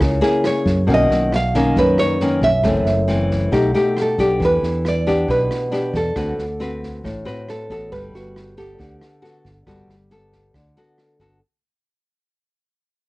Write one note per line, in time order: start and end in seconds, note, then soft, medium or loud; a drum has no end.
0.00 0.21 C#2 medium
0.00 0.86 C#3 soft
0.00 0.46 A#4 medium
0.00 kick medium
0.00 cross-stick medium
0.00 snare soft
0.21 0.84 A#3 medium
0.21 0.85 E4 medium
0.21 0.85 G#4 medium
0.21 snare soft
0.44 0.91 C#5 medium
0.44 cross-stick medium
0.44 snare soft
0.66 0.87 F#2 medium
0.66 kick soft
0.66 snare soft
0.87 1.09 B1 medium
0.87 1.73 B2 medium
0.87 1.32 D#3 medium
0.87 1.32 A#3 medium
0.87 1.32 C#4 medium
0.87 kick medium
0.87 snare soft
0.94 1.35 D#5 loud
1.10 1.72 B1 medium
1.10 snare soft
1.32 1.79 F5 medium
1.32 cross-stick medium
1.32 snare soft
1.54 2.17 D#3 medium
1.54 2.17 A#3 medium
1.54 2.17 C#4 medium
1.54 kick soft
1.54 snare soft
1.76 1.96 F#2 medium
1.76 2.63 F#2 soft
1.76 2.00 B4 medium
1.76 kick medium
1.76 snare soft
1.98 2.43 C#5 medium
1.98 cross-stick medium
1.98 snare soft
2.20 2.49 D#3 soft
2.20 2.49 A#3 soft
2.20 2.50 C#4 medium
2.20 snare soft
2.42 2.62 B1 medium
2.42 2.84 E5 medium
2.42 kick soft
2.42 snare soft
2.63 2.84 F#1 medium
2.63 3.50 F#2 soft
2.63 2.93 E3 soft
2.63 2.93 A3 medium
2.63 2.93 C4 medium
2.63 kick medium
2.63 cross-stick medium
2.63 snare soft
2.85 3.47 F#1 medium
2.85 snare soft
3.08 3.50 E3 soft
3.08 3.50 A3 medium
3.08 3.51 C4 medium
3.08 snare soft
3.30 kick soft
3.30 snare soft
3.52 3.73 B1 medium
3.52 4.38 B2 soft
3.52 3.71 A3 soft
3.52 3.71 D#4 medium
3.52 3.71 G4 medium
3.52 kick medium
3.52 cross-stick medium
3.52 snare soft
3.74 4.15 A3 medium
3.74 4.15 D#4 medium
3.74 4.15 G4 medium
3.74 snare soft
3.97 cross-stick medium
3.97 snare soft
4.01 4.44 A4 medium
4.18 4.39 B1 medium
4.18 5.03 B3 medium
4.18 5.03 D4 soft
4.18 5.03 G4 medium
4.18 kick soft
4.18 snare soft
4.40 4.61 E2 medium
4.40 5.25 E3 medium
4.40 kick medium
4.40 snare soft
4.45 4.88 B4 medium
4.62 5.24 E2 medium
4.62 snare soft
4.85 5.30 D5 medium
4.85 cross-stick medium
4.85 snare soft
5.06 5.69 B3 medium
5.06 5.69 D4 medium
5.06 5.69 G4 medium
5.06 kick soft
5.06 snare soft
5.28 5.48 B1 medium
5.28 6.13 B2 medium
5.28 5.96 B4 medium
5.28 kick medium
5.28 snare soft
5.51 cross-stick medium
5.51 snare soft
5.71 6.00 B3 medium
5.71 6.00 D4 medium
5.71 6.00 G4 medium
5.71 snare soft
5.94 6.14 E2 medium
5.94 6.79 A4 medium
5.94 kick soft
5.94 snare soft
6.16 6.36 D2 medium
6.16 7.01 D3 soft
6.16 6.44 C4 soft
6.16 6.44 F#4 medium
6.16 6.45 B4 medium
6.16 kick medium
6.16 cross-stick medium
6.16 snare soft
6.38 7.00 D2 medium
6.38 snare soft
6.60 7.03 C4 medium
6.60 7.04 F#4 medium
6.60 7.04 B4 medium
6.60 snare soft
6.82 kick soft
6.82 snare soft
7.04 7.24 A1 medium
7.04 7.89 A2 medium
7.04 kick medium
7.04 cross-stick medium
7.04 snare soft
7.25 7.66 C4 medium
7.25 7.66 F#4 medium
7.25 7.66 B4 medium
7.25 snare soft
7.49 7.92 A4 medium
7.49 cross-stick medium
7.49 snare soft
7.70 7.90 A1 medium
7.70 8.54 B3 medium
7.70 8.54 F#4 soft
7.70 8.55 A4 medium
7.70 kick soft
7.70 snare soft
7.92 8.12 G1 medium
7.92 8.77 G3 medium
7.92 8.14 B4 loud
7.92 kick medium
7.92 snare soft
8.14 8.75 G1 medium
8.14 8.57 F#4 medium
8.14 snare soft
8.36 cross-stick medium
8.36 snare soft
8.57 9.19 B3 medium
8.57 10.94 G4 medium
8.57 9.20 A4 medium
8.57 kick soft
8.57 snare soft
8.79 8.99 D2 medium
8.79 9.64 D3 medium
8.79 kick medium
8.79 snare soft
9.01 cross-stick soft
9.01 snare soft
9.22 9.51 B3 soft
9.22 9.50 F#4 medium
9.22 9.51 A4 medium
9.22 snare soft
9.45 9.65 G1 medium
9.45 kick soft
9.45 snare soft
9.66 9.87 G1 medium
9.66 10.52 G3 medium
9.66 9.95 B3 medium
9.66 9.95 F#4 medium
9.66 9.95 A4 medium
9.66 kick medium
9.66 cross-stick medium
9.66 snare soft
9.87 10.49 G1 medium
9.87 snare soft
10.10 10.54 B3 medium
10.10 10.55 A4 medium
10.10 snare soft
10.32 kick soft
10.32 snare soft
10.54 10.74 D2 medium
10.54 11.40 D3 medium
10.54 kick medium
10.54 cross-stick medium
10.54 snare soft
10.76 11.17 B3 medium
10.76 11.17 F#4 medium
10.76 11.17 A4 medium
10.76 snare soft
10.98 cross-stick medium
10.98 snare soft
11.19 11.40 G1 medium
11.19 11.38 B3 medium
11.19 11.38 F#4 soft
11.19 11.39 A4 medium
11.19 kick soft
11.19 snare soft